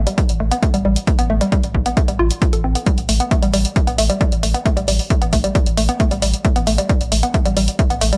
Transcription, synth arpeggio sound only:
0.07 0.10 G3 loud
0.18 0.23 G3 medium
0.40 0.48 A3 medium
0.52 0.56 B3 loud
0.63 0.68 A3 loud
0.74 0.77 G3 loud
0.85 0.90 G3 loud
1.07 1.15 A3 medium
1.19 1.24 B3 loud
1.30 1.35 A3 loud
1.41 1.44 G3 loud
1.52 1.57 G3 loud
1.75 1.82 A3 medium
1.86 1.91 B3 loud
1.97 2.02 A3 medium
2.08 2.11 G3 medium
2.19 2.22 F4 loud
2.42 2.45 A3 medium
2.53 2.58 A4 medium
2.64 2.67 C4 medium
2.75 2.78 B3 medium
2.86 2.91 G3 loud
3.09 3.16 A3 medium
3.20 3.25 B3 loud
3.31 3.36 A3 loud
3.43 3.45 G3 loud
3.54 3.59 G3 loud
3.76 3.83 A3 medium
3.87 3.92 B3 loud
3.98 4.03 A3 loud
4.10 4.13 G3 loud
4.21 4.26 G3 loud
4.43 4.51 A3 medium
4.54 4.59 B3 loud
4.66 4.70 A3 loud
4.77 4.80 G3 loud
4.88 4.93 G3 loud
5.10 5.18 A3 medium
5.22 5.26 B3 loud
5.33 5.38 A3 loud
5.44 5.47 G3 loud
5.55 5.60 G3 loud
5.77 5.85 A3 medium
5.89 5.94 B3 loud
6.00 6.05 A3 loud
6.11 6.14 G3 loud
6.22 6.27 G3 loud
6.45 6.52 A3 medium
6.56 6.61 B3 loud
6.67 6.72 A3 loud
6.78 6.81 G3 loud
6.89 6.94 G3 loud
7.12 7.19 A3 medium
7.23 7.28 B3 loud
7.34 7.39 A3 loud
7.46 7.48 G3 loud
7.57 7.62 G3 loud
7.79 7.86 A3 medium
7.90 7.95 B3 loud
8.01 8.06 A3 loud
8.13 8.16 G3 loud

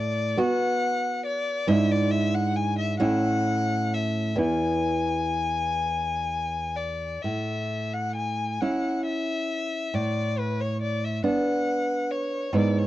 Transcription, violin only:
0.00 0.41 D5 medium
0.39 1.25 F#5 medium
1.26 1.70 D5 medium
1.68 1.93 E5 medium
1.91 2.13 D5 medium
2.11 2.36 E5 medium
2.35 2.58 F#5 medium
2.56 2.78 G#5 medium
2.78 2.98 E5 medium
2.99 3.95 F#5 medium
3.94 4.40 E5 medium
4.41 6.78 G#5 medium
6.76 7.24 D5 medium
7.22 7.95 E5 medium
7.93 8.15 F#5 medium
8.16 8.63 G#5 medium
8.61 9.05 F#5 medium
9.05 9.96 E5 medium
9.95 10.40 D5 medium
10.39 10.62 B4 medium
10.61 10.81 C#5 medium
10.82 11.06 D5 medium
11.05 11.24 E5 medium
11.25 12.13 F#5 medium
12.11 12.57 C#5 medium
12.55 12.80 D5 medium
12.78 12.87 C#5 medium

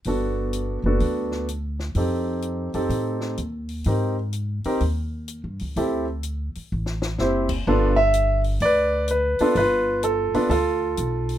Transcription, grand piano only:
0.07 0.78 B3 soft
0.07 0.79 D4 soft
0.07 0.79 F#4 soft
0.07 0.79 A4 soft
0.86 1.45 B3 soft
0.86 1.46 D4 soft
0.86 1.46 F#4 soft
0.86 1.46 A4 medium
1.96 2.69 C4 soft
1.96 2.69 D#4 soft
1.96 2.69 G4 soft
1.96 2.69 A4 soft
2.74 3.35 C4 soft
2.74 3.35 D#4 soft
2.74 3.35 G4 soft
2.74 3.35 A4 medium
3.86 4.14 C4 soft
3.86 4.14 D#4 soft
3.86 4.15 G4 soft
3.86 4.15 A#4 soft
4.66 4.80 C4 medium
4.66 4.80 D#4 soft
4.66 4.80 G4 medium
4.66 4.80 A#4 medium
5.77 6.05 C4 soft
5.77 6.05 E4 soft
5.77 6.05 G4 soft
5.77 6.05 A4 medium
7.20 7.47 C4 medium
7.20 7.47 E4 medium
7.20 7.48 G4 soft
7.20 7.47 C5 medium
7.67 7.95 B3 medium
7.67 7.95 D4 medium
7.67 7.95 F4 medium
7.67 7.95 A4 medium
7.96 8.41 E5 medium
8.62 9.09 B4 medium
8.62 9.05 D5 medium
9.11 9.54 B4 medium
9.40 9.54 B3 medium
9.40 9.55 D4 medium
9.40 9.55 F4 medium
9.40 9.55 A4 medium
9.57 10.33 F4 medium
9.57 10.00 B4 medium
10.04 10.34 A4 medium
10.35 10.49 B3 medium
10.35 10.49 D4 medium
10.35 10.49 F4 medium
10.35 10.48 A4 medium
10.50 11.38 F4 medium
10.50 11.36 A4 medium

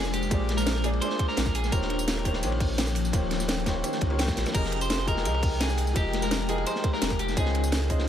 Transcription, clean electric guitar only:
0.06 0.13 G#4 medium
0.13 0.59 G4 loud
0.57 0.85 A#4 loud
0.84 0.89 G#4 medium
1.01 1.28 C5 loud
1.28 1.56 A#4 medium
1.55 1.73 G#4 medium
1.72 2.39 A#4 medium
4.55 4.81 A#4 loud
4.82 5.08 C5 loud
5.08 5.62 A#4 loud
5.61 5.96 G#4 loud
5.96 6.23 G4 loud
6.23 6.47 A#4 loud
6.50 6.67 G#4 medium
6.67 6.93 C5 loud
6.93 7.20 A#4 loud
7.20 7.37 G4 medium
7.37 8.04 G#4 medium

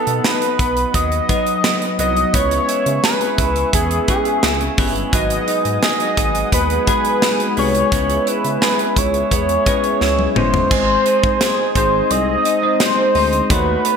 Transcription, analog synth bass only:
0.07 0.20 B2 medium
0.59 0.85 B1 medium
0.94 1.20 D#2 medium
1.99 2.25 C2 medium
2.34 2.60 C#2 loud
2.86 2.99 C#3 medium
3.38 3.65 C#2 medium
3.73 3.99 E2 medium
4.43 4.69 C#2 loud
4.78 5.04 G1 loud
5.13 5.39 G#1 loud
5.65 5.78 G#2 medium
6.17 6.44 G#1 medium
6.52 6.79 D#2 medium
7.57 7.83 C2 medium
7.92 8.18 C#2 loud
8.44 8.58 C#3 medium
8.96 9.23 C#2 medium
9.31 9.58 E2 medium
10.01 10.27 C#2 medium
10.36 10.62 G1 medium
10.71 10.97 G#1 loud
11.23 11.37 G#2 medium
11.76 12.02 G#1 medium
12.11 12.37 C2 medium
13.15 13.41 D2 medium
13.50 13.76 D#2 loud

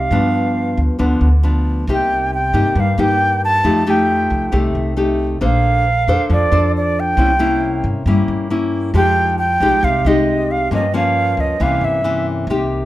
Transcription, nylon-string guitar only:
0.11 0.98 G2 medium
0.11 0.96 F3 medium
0.11 0.97 B3 medium
0.11 0.97 D4 medium
0.99 1.85 D3 medium
0.99 1.28 F3 medium
0.99 1.28 B3 medium
0.99 1.28 D4 medium
1.43 1.84 F3 medium
1.43 1.85 B3 medium
1.43 1.85 D4 medium
1.89 2.74 C3 medium
1.89 2.32 A#3 medium
1.89 2.33 D#4 medium
1.89 2.33 G4 medium
2.54 2.95 A#3 medium
2.54 2.95 D#4 medium
2.54 2.95 G4 medium
2.77 3.62 G2 medium
2.98 3.62 A#3 medium
2.98 3.63 D#4 medium
2.98 3.63 G4 medium
3.64 4.50 F3 medium
3.64 3.83 A3 medium
3.64 3.83 D#4 medium
3.64 3.83 G4 medium
3.87 4.49 A3 medium
3.87 4.49 D#4 medium
3.87 4.49 G4 medium
4.52 5.38 C3 medium
4.52 4.93 A3 medium
4.52 4.93 D#4 medium
4.52 4.93 G4 medium
4.97 5.37 A3 medium
4.97 5.38 D#4 medium
4.97 5.38 G4 medium
5.41 6.27 A#3 medium
5.41 5.85 D4 medium
5.41 5.85 A4 medium
5.41 5.85 C5 medium
6.08 6.48 D4 medium
6.08 6.48 A4 medium
6.08 6.49 C5 medium
6.30 7.16 F3 medium
6.52 7.16 D4 medium
6.52 7.16 A4 medium
6.52 7.16 C5 medium
7.18 8.04 C3 medium
7.18 7.30 A#3 soft
7.18 7.31 C#4 medium
7.18 7.31 E4 medium
7.39 8.02 A#3 medium
7.39 8.02 C#4 medium
7.39 8.02 E4 medium
8.07 8.93 G3 medium
8.07 8.47 A#3 soft
8.07 8.47 C#4 medium
8.07 8.47 E4 medium
8.50 8.91 A#3 medium
8.50 8.91 C#4 medium
8.50 8.91 E4 medium
8.94 9.80 F3 medium
8.94 9.38 G#3 medium
8.94 9.38 D#4 medium
8.94 9.39 G4 medium
9.61 10.02 G#3 medium
9.61 10.02 D#4 medium
9.61 10.02 G4 medium
9.84 10.69 C3 medium
10.06 10.70 G#3 medium
10.06 10.70 D#4 medium
10.06 10.70 G4 medium
10.71 11.57 G2 medium
10.71 10.84 F3 soft
10.71 10.84 A#3 soft
10.71 10.85 C#4 medium
10.94 11.56 F3 medium
10.94 11.56 A#3 medium
10.94 11.57 C#4 medium
11.60 12.46 C3 soft
11.60 12.00 E3 medium
11.60 12.01 A#3 medium
11.60 12.01 C#4 medium
12.04 12.45 E3 medium
12.04 12.45 A#3 medium
12.04 12.45 C#4 medium
12.50 12.85 C3 medium
12.50 12.85 A#3 soft
12.50 12.85 D#4 medium
12.50 12.85 G4 medium

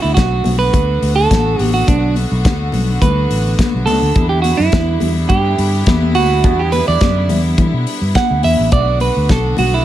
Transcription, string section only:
0.00 8.69 D3 medium
0.00 4.12 A3 medium
0.00 4.12 B3 medium
0.00 4.12 F#4 medium
4.15 8.68 G3 medium
4.15 8.68 B3 medium
4.15 8.68 E4 medium
8.73 9.85 D3 medium
8.73 9.85 A3 medium
8.73 9.85 B3 medium
8.73 9.85 F#4 medium

